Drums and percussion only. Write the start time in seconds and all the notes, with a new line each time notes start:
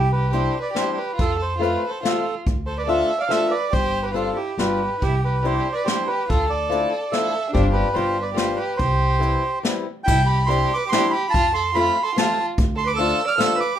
0.33 closed hi-hat
0.76 snare, closed hi-hat
1.19 kick, closed hi-hat
1.63 closed hi-hat
2.05 snare, closed hi-hat
2.47 kick, closed hi-hat
2.88 closed hi-hat
3.31 snare, closed hi-hat
3.73 kick, closed hi-hat
4.15 closed hi-hat
4.59 snare, closed hi-hat
5.02 kick, closed hi-hat
5.45 closed hi-hat
5.88 snare, closed hi-hat
6.30 kick, closed hi-hat
6.71 closed hi-hat
7.13 snare, closed hi-hat
7.55 kick, closed hi-hat
7.96 closed hi-hat
8.37 snare, closed hi-hat
8.79 kick, closed hi-hat
9.22 closed hi-hat
9.65 snare, closed hi-hat
10.08 kick, crash
10.50 closed hi-hat
10.93 snare, closed hi-hat
11.34 kick, closed hi-hat
11.76 closed hi-hat
12.18 snare, closed hi-hat
12.58 kick, closed hi-hat
12.99 closed hi-hat
13.40 snare, closed hi-hat